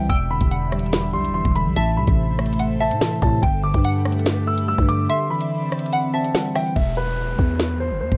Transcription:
0.00 0.11 D3 medium
0.00 0.12 E3 medium
0.00 0.12 G3 medium
0.00 0.12 C4 medium
0.09 0.40 E1 loud
0.09 1.14 E2 medium
0.09 1.75 E3 medium
0.09 1.75 D4 medium
0.09 1.75 G4 medium
0.09 3.40 E5 loud
0.09 0.49 G5 loud
0.09 0.26 E6 medium
0.09 kick loud
0.09 closed hi-hat medium
0.31 1.35 D3 medium
0.31 1.10 B5 medium
0.41 1.15 E1 loud
0.41 kick loud
0.41 closed hi-hat medium
0.51 0.91 F#5 medium
0.51 closed hi-hat medium
0.72 1.13 G3 medium
0.72 cross-stick medium
0.72 closed hi-hat medium
0.79 closed hi-hat medium
0.86 closed hi-hat medium
0.93 snare loud
0.93 closed hi-hat medium
1.13 1.31 B1 loud
1.13 1.76 G3 medium
1.13 1.31 C6 medium
1.25 closed hi-hat medium
1.29 1.44 E1 loud
1.34 1.77 E3 medium
1.34 1.51 C6 medium
1.45 1.67 E1 loud
1.45 kick loud
1.55 1.76 D3 medium
1.55 1.72 B5 medium
1.55 closed hi-hat medium
1.66 1.76 B1 loud
1.76 1.99 A1 loud
1.76 2.81 A2 medium
1.76 3.41 A3 medium
1.76 5.06 A4 medium
1.76 3.41 C5 medium
1.76 2.16 E5 loud
1.76 1.93 A5 medium
1.76 closed hi-hat medium
1.97 2.07 C2 loud
1.97 3.02 C3 medium
1.97 2.56 B5 medium
2.07 2.92 A1 loud
2.07 kick medium
2.07 closed hi-hat medium
2.39 2.80 A3 medium
2.39 cross-stick medium
2.39 closed hi-hat soft
2.46 closed hi-hat medium
2.53 closed hi-hat medium
2.59 2.79 F#5 medium
2.59 closed hi-hat medium
2.80 3.43 A3 medium
2.80 3.00 E5 medium
2.80 3.20 A5 medium
2.91 3.21 A2 loud
2.91 closed hi-hat medium
3.01 3.43 E3 medium
3.01 snare loud
3.22 3.42 A2 loud
3.22 3.43 C3 medium
3.22 3.39 A5 medium
3.22 kick loud
3.22 closed hi-hat medium
3.42 3.73 G1 loud
3.42 4.48 G2 medium
3.42 5.08 G3 medium
3.42 6.73 G4 medium
3.42 5.08 B4 loud
3.42 3.60 G5 medium
3.42 3.82 G5 loud
3.42 kick loud
3.42 closed hi-hat medium
3.63 4.68 D3 medium
3.63 4.43 D6 medium
3.74 4.74 G2 loud
3.74 kick loud
3.74 closed hi-hat medium
3.85 4.24 F#5 medium
3.85 closed hi-hat medium
4.05 4.45 A3 medium
4.05 cross-stick medium
4.05 closed hi-hat medium
4.12 closed hi-hat medium
4.19 closed hi-hat medium
4.26 snare loud
4.26 closed hi-hat medium
4.47 5.09 A3 medium
4.47 4.64 E6 medium
4.58 closed hi-hat medium
4.68 5.10 G3 medium
4.68 4.85 E6 medium
4.78 5.08 G2 loud
4.78 kick loud
4.89 5.08 D3 medium
4.89 5.06 D6 medium
4.89 closed hi-hat medium
5.09 6.14 D3 loud
5.09 6.75 C4 medium
5.09 6.75 D5 medium
5.09 6.75 E5 loud
5.09 5.49 E5 loud
5.09 5.26 C6 medium
5.09 closed hi-hat medium
5.30 6.35 E3 medium
5.30 6.10 B5 medium
5.41 closed hi-hat medium
5.72 6.13 C4 medium
5.72 cross-stick medium
5.72 closed hi-hat soft
5.79 closed hi-hat medium
5.86 closed hi-hat medium
5.93 6.13 F#5 loud
5.93 closed hi-hat medium
6.14 6.76 C4 medium
6.14 6.34 E5 medium
6.14 6.53 A5 medium
6.24 closed hi-hat medium
6.35 6.76 G3 medium
6.35 6.55 F#5 medium
6.35 snare loud
6.55 6.77 E3 medium
6.55 6.75 E5 medium
6.55 6.72 G5 medium
6.55 cross-stick medium
6.55 open hi-hat medium
6.76 7.36 E1 loud
6.76 6.93 E5 medium
6.76 kick loud
6.76 downlifter medium
6.97 7.76 B4 medium
7.39 7.92 E2 loud
7.39 kick medium
7.60 snare loud
7.80 7.97 C5 medium
7.91 8.03 G1 loud
8.01 8.11 E2 loud
8.01 8.17 C5 medium
8.12 8.17 E1 loud
8.12 kick loud

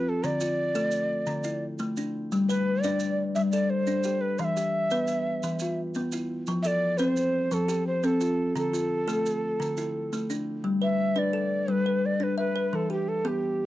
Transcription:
0.00 0.40 F4 medium
0.00 0.11 B4 loud
0.09 0.27 A4 medium
0.24 0.59 D3 medium
0.24 1.63 D5 loud
0.24 maracas medium
0.41 0.93 F4 medium
0.41 maracas medium
0.75 1.10 A3 medium
0.75 1.28 A4 medium
0.75 maracas medium
0.91 maracas medium
1.27 1.62 D3 medium
1.27 maracas medium
1.44 1.97 E4 medium
1.44 maracas medium
1.79 2.14 A3 medium
1.79 maracas medium
1.97 2.49 D4 medium
1.97 maracas medium
2.32 2.66 G3 medium
2.32 maracas medium
2.49 2.84 B4 medium
2.49 3.01 B4 medium
2.49 maracas medium
2.82 3.18 D4 medium
2.82 3.17 D5 loud
2.82 3.36 D5 medium
2.82 maracas medium
3.00 maracas medium
3.35 3.70 G3 medium
3.35 3.41 E5 loud
3.35 maracas medium
3.52 4.05 A4 medium
3.52 3.71 D5 medium
3.52 maracas medium
3.70 4.22 C5 loud
3.87 4.22 D4 medium
3.87 maracas medium
4.04 4.56 G4 medium
4.04 maracas medium
4.21 4.41 B4 medium
4.38 4.74 E3 medium
4.38 4.45 F5 medium
4.38 maracas medium
4.44 5.78 E5 loud
4.57 5.09 G4 medium
4.57 maracas medium
4.90 5.26 B3 medium
4.90 5.43 B4 medium
4.90 maracas medium
5.07 maracas medium
5.43 5.78 E3 medium
5.43 maracas medium
5.59 6.13 F4 medium
5.59 maracas medium
5.95 6.30 B3 medium
5.95 maracas medium
6.12 6.65 E4 medium
6.12 maracas medium
6.47 6.82 F3 medium
6.47 maracas medium
6.62 7.17 A4 medium
6.62 6.68 E5 loud
6.62 maracas medium
6.67 6.99 D5 loud
6.97 7.34 C4 medium
6.97 7.55 C5 loud
6.97 7.51 C5 medium
6.97 maracas medium
7.17 maracas medium
7.51 7.86 F3 medium
7.51 7.87 A4 medium
7.51 maracas medium
7.68 8.21 G4 medium
7.68 maracas medium
7.87 8.06 C5 medium
8.03 8.38 C4 medium
8.03 8.56 A4 medium
8.03 maracas medium
8.21 8.72 F4 medium
8.21 maracas medium
8.55 8.90 D3 medium
8.55 10.26 A4 medium
8.55 maracas medium
8.73 9.25 F4 medium
8.73 maracas medium
9.07 9.42 A3 medium
9.07 9.60 A4 medium
9.07 maracas medium
9.26 maracas medium
9.60 9.94 D3 medium
9.60 maracas medium
9.77 10.30 E4 medium
9.77 maracas medium
10.13 10.47 A3 medium
10.13 maracas medium
10.30 10.82 D4 medium
10.30 maracas medium
10.64 10.99 G3 medium
10.81 11.15 B4 medium
10.81 11.20 E5 loud
11.16 11.51 D4 medium
11.16 11.68 B4 medium
11.16 11.73 D5 medium
11.33 11.86 A4 medium
11.68 12.03 G3 medium
11.68 12.07 B4 medium
11.86 12.38 B4 medium
12.06 12.25 D5 medium
12.20 12.55 D4 medium
12.20 12.38 B4 medium
12.38 12.77 B4 medium
12.38 12.90 E5 medium
12.56 12.91 B4 medium
12.73 13.08 E3 medium
12.73 12.92 A4 medium
12.90 13.24 G4 medium
12.90 13.10 G4 medium
13.09 13.29 A4 medium
13.25 13.60 B3 medium
13.25 13.66 G4 medium

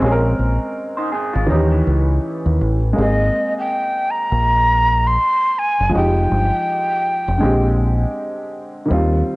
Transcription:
0.00 0.32 A#1 loud
0.00 1.44 G#3 medium
0.00 1.46 C4 medium
0.00 1.47 C#4 medium
0.05 0.11 G#4 medium
0.12 1.52 A#4 medium
0.39 0.57 A#1 medium
0.97 1.12 D#4 medium
0.97 1.11 C5 medium
1.12 1.33 C4 medium
1.12 1.33 G#4 medium
1.33 1.47 G#1 medium
1.33 1.48 G#3 medium
1.33 1.48 F4 medium
1.47 1.81 D#2 medium
1.47 2.93 E3 medium
1.47 1.70 G3 medium
1.47 2.94 C#4 medium
1.47 1.70 D#4 medium
1.52 2.96 D#4 medium
1.52 2.97 G4 medium
1.71 2.79 E3 medium
1.71 2.78 C#4 medium
1.87 2.18 C#2 medium
2.46 2.58 D#2 medium
2.61 2.92 A1 medium
2.93 5.87 G#3 medium
2.93 5.88 A#3 medium
2.98 3.29 G#1 loud
2.98 5.90 C4 medium
2.98 5.91 G#4 medium
2.98 3.54 D#5 medium
3.59 4.12 G5 medium
4.11 5.09 A#5 loud
4.32 5.16 A#1 medium
5.07 5.60 C6 loud
5.59 5.95 G#5 loud
5.80 5.92 F#1 medium
5.89 7.37 F3 medium
5.89 7.38 G#3 medium
5.94 6.25 F1 loud
5.94 7.39 D#4 medium
5.94 7.41 G4 medium
5.94 8.13 G5 loud
6.32 6.50 G1 medium
7.28 7.40 F1 loud
7.38 8.85 D3 medium
7.38 8.86 G#3 medium
7.42 8.04 A#1 loud
7.42 8.88 C4 medium
7.42 8.89 G4 medium
8.86 9.36 D#3 medium
8.86 9.36 G3 medium
8.91 9.21 D#2 loud
8.91 9.36 C4 medium
8.91 9.36 F4 medium

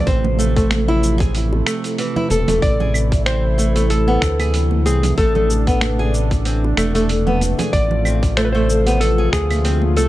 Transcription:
0.00 7.69 C3 medium
0.00 2.58 F3 medium
0.00 2.59 A3 medium
0.00 0.07 D5 medium
0.07 1.63 A1 loud
0.07 0.24 C4 medium
0.07 1.31 C5 medium
0.07 kick loud
0.07 open hi-hat medium
0.07 shaker soft
0.24 high conga medium
0.24 low conga medium
0.39 0.55 A3 loud
0.39 shaker medium
0.56 0.70 A3 loud
0.56 kick loud
0.56 open hi-hat soft
0.56 shaker soft
0.71 finger snap medium
0.71 open hi-hat medium
0.71 high conga medium
0.71 shaker soft
0.88 1.19 E4 loud
1.03 shaker medium
1.19 1.34 G#4 medium
1.19 kick loud
1.19 open hi-hat soft
1.19 high bongo soft
1.19 shaker soft
1.35 open hi-hat medium
1.35 shaker soft
1.53 high bongo medium
1.67 1.83 A3 medium
1.67 finger snap medium
1.67 open hi-hat medium
1.67 claves medium
1.67 shaker medium
1.84 open hi-hat soft
1.84 shaker soft
1.98 2.14 E3 medium
1.98 open hi-hat medium
1.98 shaker soft
2.16 2.30 E4 loud
2.16 low conga medium
2.30 2.45 E1 medium
2.30 2.47 A4 medium
2.30 open hi-hat soft
2.30 high conga medium
2.30 shaker medium
2.48 2.60 E1 medium
2.48 2.61 A3 medium
2.48 open hi-hat soft
2.48 high bongo medium
2.48 low conga loud
2.48 shaker soft
2.62 4.19 A1 loud
2.62 7.69 E3 medium
2.62 10.09 A3 medium
2.62 5.15 E4 loud
2.62 3.26 D5 loud
2.62 kick loud
2.62 open hi-hat medium
2.62 shaker soft
2.80 2.94 G#4 medium
2.80 low conga medium
2.94 claves medium
2.94 shaker medium
3.12 kick loud
3.12 open hi-hat soft
3.12 shaker soft
3.26 3.43 C4 medium
3.26 3.86 C5 medium
3.26 finger snap medium
3.26 open hi-hat medium
3.26 shaker soft
3.58 3.74 A3 medium
3.58 shaker medium
3.76 3.89 A3 medium
3.76 open hi-hat soft
3.76 high bongo medium
3.76 shaker soft
3.90 4.86 A4 medium
3.90 open hi-hat medium
3.90 shaker soft
4.08 4.21 B3 loud
4.22 4.87 D2 loud
4.22 finger snap medium
4.22 kick loud
4.22 open hi-hat medium
4.22 shaker medium
4.40 4.53 G#4 medium
4.40 open hi-hat soft
4.40 high conga medium
4.40 claves medium
4.40 shaker soft
4.54 open hi-hat medium
4.54 shaker soft
4.71 high conga medium
4.86 5.13 C2 loud
4.86 5.02 C4 medium
4.86 5.17 G#4 medium
4.86 open hi-hat soft
4.86 high bongo soft
4.86 shaker medium
5.03 open hi-hat soft
5.03 low conga loud
5.03 shaker soft
5.18 6.74 A1 loud
5.18 5.34 A3 loud
5.18 7.71 D4 medium
5.18 6.41 A4 medium
5.18 kick loud
5.18 open hi-hat medium
5.18 shaker soft
5.35 5.49 A3 loud
5.35 high conga medium
5.35 low conga medium
5.50 shaker medium
5.67 5.81 B3 loud
5.67 kick loud
5.67 open hi-hat soft
5.67 shaker soft
5.81 finger snap medium
5.81 open hi-hat medium
5.81 high conga medium
5.81 shaker soft
5.99 6.13 G#4 medium
6.14 shaker medium
6.31 kick loud
6.31 open hi-hat soft
6.31 high bongo medium
6.31 shaker soft
6.45 6.62 C4 medium
6.45 open hi-hat medium
6.45 shaker soft
6.64 high bongo soft
6.77 7.54 E1 medium
6.77 6.94 A3 medium
6.77 finger snap medium
6.77 open hi-hat medium
6.77 claves medium
6.77 shaker medium
6.95 7.08 A3 loud
6.95 open hi-hat soft
6.95 shaker soft
7.09 open hi-hat medium
7.09 shaker soft
7.27 7.40 B3 loud
7.27 low conga loud
7.41 open hi-hat soft
7.41 high conga medium
7.41 shaker medium
7.59 7.72 G#4 medium
7.59 open hi-hat soft
7.59 high bongo medium
7.59 low conga medium
7.59 shaker soft
7.73 9.29 A1 loud
7.73 10.09 C3 medium
7.73 10.09 F3 medium
7.73 10.09 F4 loud
7.73 8.37 D5 loud
7.73 kick loud
7.73 open hi-hat medium
7.73 shaker soft
7.91 low conga medium
8.05 8.22 C4 medium
8.05 claves medium
8.05 shaker medium
8.23 kick loud
8.23 open hi-hat soft
8.23 shaker soft
8.37 8.53 A3 loud
8.37 8.44 C5 loud
8.37 finger snap medium
8.37 open hi-hat medium
8.37 shaker soft
8.45 8.52 B4 medium
8.53 8.68 A3 loud
8.53 8.97 C5 loud
8.70 shaker medium
8.86 9.00 B3 loud
8.86 open hi-hat soft
8.86 high bongo medium
8.86 shaker soft
9.01 9.32 A4 loud
9.01 open hi-hat medium
9.01 shaker soft
9.18 9.32 G#4 medium
9.33 9.98 D2 loud
9.33 9.96 G#4 medium
9.33 finger snap medium
9.33 kick medium
9.33 open hi-hat medium
9.33 shaker medium
9.51 open hi-hat soft
9.51 high conga medium
9.51 claves medium
9.51 shaker soft
9.64 9.81 C4 medium
9.64 open hi-hat medium
9.64 shaker soft
9.82 high conga medium
9.96 10.09 C2 loud
9.96 10.09 A3 loud
9.96 10.09 A4 loud
9.96 open hi-hat soft
9.96 high bongo soft
9.96 shaker medium

